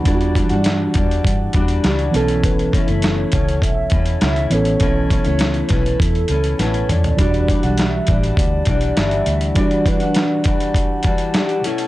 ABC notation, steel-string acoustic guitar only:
X:1
M:4/4
L:1/16
Q:1/4=101
K:Edor
V:1 name="Steel-string acoustic guitar"
[E,G,DF]2 [E,G,DF] [G,DF]3 [E,G,DF]4 [E,G,DF]2 [E,G,DF]2 [B,,A,CE]2- | [B,,A,CE]2 [B,,A,CE] [A,CE]3 [B,,A,CE]4 [B,,A,CE]2 [B,,A,CE]4 | [B,,A,CE]2 [B,,A,CE] [A,CE]3 [B,,A,CE]4 [B,,A,CE]2 [B,,A,CE]4 | [E,G,DF]2 [E,G,DF] [G,DF]3 [E,G,DF]4 [E,G,DF]2 [E,G,DF]4 |
[E,G,DF]2 [E,G,DF] [G,DF]3 [E,G,DF]4 [E,G,DF]2 [E,G,DF]2 [B,,A,CE]2 |]